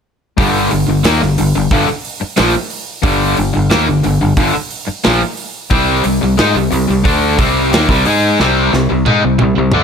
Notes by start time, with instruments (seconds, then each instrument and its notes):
0.37 fingered electric bass G1, distorted electric guitar G2 D3 G3, kick, open hi-hat
0.71 fingered electric bass G1, distorted electric guitar G2 D3, open hi-hat
0.88 fingered electric bass G1, distorted electric guitar G2 D3
1.04 fingered electric bass D#2, distorted electric guitar D#3 A#3, snare, open hi-hat
1.21 fingered electric bass G1, distorted electric guitar G2 D3, snare
1.38 fingered electric bass G1, distorted electric guitar G2 D3, open hi-hat
1.55 fingered electric bass G1, distorted electric guitar G2 D3
1.71 fingered electric bass G1, distorted electric guitar G2 D3, kick, open hi-hat
1.88 muted distorted electric guitar stroke, muted overdriven electric guitar stroke, muted fingered electric bass stroke
2.05 open hi-hat
2.21 muted distorted electric guitar stroke, muted overdriven electric guitar stroke, muted fingered electric bass stroke
2.37 fingered electric bass A#1, distorted electric guitar A#2 F3, snare, open hi-hat
2.70 open hi-hat
3.02 fingered electric bass G1, distorted electric guitar G2 D3 G3, kick, open hi-hat
3.37 fingered electric bass G1, distorted electric guitar G2 D3, open hi-hat
3.53 fingered electric bass G1, distorted electric guitar G2 D3
3.70 fingered electric bass D#2, distorted electric guitar D#3 A#3, snare, open hi-hat
3.87 fingered electric bass G1, distorted electric guitar G2 D3
4.03 fingered electric bass G1, distorted electric guitar G2 D3, open hi-hat
4.21 fingered electric bass G1, distorted electric guitar G2 D3
4.37 fingered electric bass G1, distorted electric guitar G2 D3, kick, open hi-hat
4.54 muted overdriven electric guitar stroke, muted distorted electric guitar stroke, muted fingered electric bass stroke
4.70 open hi-hat
4.87 muted overdriven electric guitar stroke, muted distorted electric guitar stroke, muted fingered electric bass stroke
5.04 fingered electric bass A#1, distorted electric guitar A#2 F3, snare, open hi-hat
5.37 open hi-hat
5.70 fingered electric bass C2, distorted electric guitar C3 G3 C4, kick, open hi-hat
6.04 fingered electric bass C2, distorted electric guitar C3 G3, open hi-hat
6.21 fingered electric bass C2, distorted electric guitar C3 G3
6.37 fingered electric bass G#2, distorted electric guitar G#3 D#4, snare, open hi-hat
6.54 fingered electric bass C2, distorted electric guitar C3 G3
6.71 fingered electric bass C2, distorted electric guitar C3 G3, open hi-hat
6.88 fingered electric bass C2, distorted electric guitar C3 G3
7.04 fingered electric bass D2, distorted electric guitar D3 A3 D4, kick, open hi-hat
7.38 fingered electric bass C2, distorted electric guitar C3 G3 C4, kick, open hi-hat
7.71 fingered electric bass D#2, distorted electric guitar D#3 A#3, snare, open hi-hat
7.89 fingered electric bass C2, distorted electric guitar C3 G3, kick
8.05 fingered electric bass G#2, distorted electric guitar G#3 D#4 G#4, open hi-hat
8.40 fingered electric bass C2, distorted electric guitar C3 G3 C4, snare
8.72 fingered electric bass C2, distorted electric guitar C3 G3, snare
8.89 fingered electric bass C2, distorted electric guitar C3 G3
9.06 fingered electric bass G#2, distorted electric guitar G#3 D#4, high tom
9.23 fingered electric bass C2, distorted electric guitar C3 G3
9.39 fingered electric bass C2, distorted electric guitar C3 G3, high tom
9.58 fingered electric bass C2, distorted electric guitar C3 G3
9.72 fingered electric bass D2, distorted electric guitar D3 A3 D4, mid tom